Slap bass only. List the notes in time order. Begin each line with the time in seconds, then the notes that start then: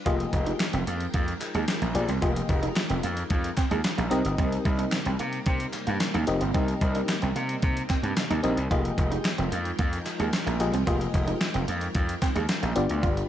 0.06 F1
0.33 F1
0.73 F1
0.87 F2
1.14 F2
1.55 D#2
1.82 A#1
1.95 A#1
2.09 C2
2.22 F1
2.49 F1
2.90 F1
3.04 F2
3.31 F2
3.71 D#2
3.98 A#1
4.12 C2
4.25 G1
4.39 C2
4.65 C2
5.06 C2
5.20 C3
5.47 C3
5.88 G2
6.14 D#2
6.28 F1
6.41 G1
6.55 C2
6.81 C2
7.23 C2
7.36 C3
7.63 C3
8.03 G2
8.30 D#2
8.44 A#1
8.57 C2
8.71 F1
8.98 F1
9.39 F1
9.52 F2
9.79 F2
10.20 D#2
10.47 A#1
10.60 A#1
10.74 C2
10.87 F1
11.14 F1
11.55 F1
11.68 F2
11.95 F2
12.36 D#2
12.63 A#1
12.76 G1
12.90 D2
13.03 G1